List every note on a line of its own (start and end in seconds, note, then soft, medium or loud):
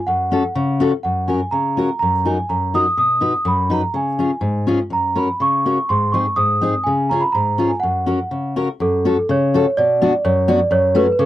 0.07 0.43 F#2 medium
0.07 0.76 F#5 medium
0.32 0.42 C#4 medium
0.32 0.42 F#4 medium
0.32 0.43 A4 medium
0.55 0.92 C#3 medium
0.80 0.91 C#4 medium
0.80 0.91 F#4 medium
0.80 0.91 A4 medium
1.03 1.41 F#2 soft
1.03 1.30 F#5 medium
1.28 1.39 C#4 soft
1.28 1.39 F#4 soft
1.28 1.40 A#4 medium
1.28 1.53 G#5 medium
1.51 1.89 C#3 medium
1.51 1.97 A#5 medium
1.77 1.88 C#4 soft
1.77 1.89 F#4 soft
1.77 1.89 A#4 medium
1.99 2.38 F#2 soft
1.99 2.26 A#5 medium
2.25 2.36 D#4 medium
2.25 2.37 F#4 soft
2.25 2.37 A#4 medium
2.25 2.50 G#5 medium
2.49 2.86 F#2 medium
2.49 2.75 A#5 medium
2.74 2.85 D#4 soft
2.74 2.85 F#4 soft
2.74 2.85 A#4 medium
2.74 2.97 D#6 medium
2.97 3.33 B2 soft
2.97 3.47 D#6 medium
3.21 3.32 D#4 soft
3.21 3.32 F#4 soft
3.21 3.32 B4 medium
3.45 3.81 F#2 medium
3.45 3.72 B5 medium
3.70 3.81 D#4 medium
3.70 3.81 F#4 soft
3.70 3.81 B4 medium
3.70 3.93 A#5 medium
3.94 4.31 C#3 soft
3.94 4.66 G#5 medium
4.19 4.30 C#4 soft
4.19 4.30 F4 soft
4.19 4.30 G#4 medium
4.41 4.79 G#2 medium
4.67 4.78 C#4 medium
4.67 4.79 F4 soft
4.67 4.79 G#4 medium
4.90 5.28 F#2 soft
4.90 5.19 A#5 medium
5.15 5.27 C#4 soft
5.15 5.28 F#4 soft
5.15 5.28 A#4 medium
5.15 5.40 B5 medium
5.40 5.78 C#3 medium
5.40 5.92 C#6 medium
5.66 5.77 C#4 soft
5.66 5.77 F#4 soft
5.66 5.77 A#4 medium
5.89 6.26 G#2 medium
5.89 6.13 C6 medium
6.12 6.25 C4 soft
6.12 6.25 D#4 soft
6.12 6.25 G#4 medium
6.12 6.38 C#6 medium
6.36 6.74 G#2 medium
6.36 6.87 D#6 medium
6.61 6.73 C4 medium
6.61 6.73 D#4 soft
6.61 6.74 G#4 medium
6.84 7.23 C#3 medium
6.84 7.11 G#5 medium
7.09 7.22 C#4 medium
7.09 7.23 F4 soft
7.09 7.22 G#4 medium
7.09 7.23 A#5 medium
7.21 7.34 B5 medium
7.32 7.71 G#2 medium
7.32 7.72 A#5 medium
7.58 7.70 C#4 medium
7.58 7.70 F4 soft
7.58 7.70 G#4 medium
7.68 7.80 G#5 medium
7.80 8.20 F#2 medium
7.80 8.52 F#5 medium
8.06 8.18 C#4 medium
8.06 8.18 F#4 soft
8.06 8.19 A#4 medium
8.31 8.68 C#3 soft
8.56 8.67 C#4 medium
8.56 8.67 F#4 medium
8.56 8.68 A#4 medium
8.80 9.17 F#2 medium
8.80 9.18 A4 medium
9.05 9.16 C#4 medium
9.05 9.16 F#4 medium
9.05 9.16 A4 medium
9.19 9.24 A4 medium
9.29 9.65 C#3 medium
9.29 9.53 C#5 medium
9.54 9.65 C#4 medium
9.54 9.65 F#4 medium
9.54 9.65 A4 medium
9.54 9.79 C#5 medium
9.77 10.13 B2 medium
9.77 10.26 D5 loud
10.02 10.12 B3 medium
10.02 10.12 D4 medium
10.02 10.13 F#4 medium
10.25 10.60 F#2 medium
10.25 10.48 C#5 medium
10.48 10.59 B3 medium
10.48 10.59 D4 medium
10.48 10.59 F#4 medium
10.48 10.72 D5 medium
10.71 11.07 F#2 medium
10.71 10.97 C#5 loud
10.95 11.06 A3 medium
10.95 11.06 C#4 medium
10.95 11.06 F#4 medium
10.95 11.11 B4 medium
11.12 11.19 B4 medium
11.19 11.26 C#3 medium
11.19 11.26 A4 medium